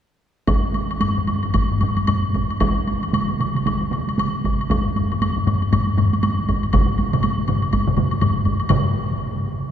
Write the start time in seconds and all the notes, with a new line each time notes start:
0.47 taiko, taiko high, high woodblock
0.64 taiko high
0.74 taiko high, high woodblock
0.90 taiko high, high woodblock
1.00 taiko low-mid, taiko high, high woodblock
1.18 taiko low-mid
1.27 taiko low-mid, taiko high, high woodblock
1.43 taiko low-mid, taiko high, high woodblock
1.54 taiko, taiko low-mid, taiko high, high woodblock
1.70 taiko low-mid, taiko high
1.81 taiko low-mid, taiko high, high woodblock
1.97 taiko high, high woodblock
2.07 taiko low-mid, taiko high, high woodblock
2.24 taiko high
2.34 taiko, taiko high, high woodblock
2.50 taiko high, high woodblock
2.60 taiko, taiko high, high woodblock
2.77 taiko high
2.87 taiko high, high woodblock
3.03 taiko high, high woodblock
3.13 taiko mid, taiko high, high woodblock
3.29 taiko mid, taiko high
3.40 taiko mid, taiko high, high woodblock
3.55 taiko mid, taiko high, high woodblock
3.66 taiko, taiko mid, taiko high, high woodblock
3.81 taiko mid, taiko high
3.92 taiko mid, taiko high, high woodblock
4.08 taiko high, high woodblock
4.18 taiko mid, taiko high, high woodblock
4.34 taiko high
4.44 taiko, taiko high, high woodblock
4.60 taiko high, high woodblock
4.70 taiko, taiko low-mid, taiko high, high woodblock
4.86 taiko low-mid, taiko high
4.96 taiko low-mid, taiko high, high woodblock
5.12 taiko low-mid, taiko high, high woodblock
5.22 taiko low-mid, taiko high, high woodblock
5.37 taiko low-mid, taiko high
5.47 taiko low-mid, taiko high, high woodblock
5.62 taiko high, high woodblock
5.72 taiko, taiko low-mid, taiko high, high woodblock
5.98 taiko low-mid, taiko high, high woodblock
6.13 taiko high, high woodblock
6.23 taiko high, high woodblock
6.39 taiko high
6.49 taiko, taiko high, high woodblock
6.63 taiko high, high woodblock
6.73 taiko, taiko low-mid, taiko mid, taiko high, high woodblock
6.89 taiko high
6.98 taiko high, high woodblock
7.13 taiko low-mid, taiko mid, taiko high, high woodblock
7.23 taiko high, high woodblock
7.39 taiko high
7.48 taiko low-mid, taiko mid, taiko high, high woodblock
7.62 taiko high, high woodblock
7.73 taiko, taiko high, high woodblock
7.87 taiko low-mid, taiko mid
7.97 taiko low-mid, taiko mid, taiko high, high woodblock
8.11 high woodblock
8.21 taiko low-mid, taiko mid, taiko high, high woodblock
8.36 taiko high
8.45 taiko, taiko high, high woodblock
8.60 taiko high, high woodblock
8.69 taiko, taiko low-mid, taiko mid, taiko high, high woodblock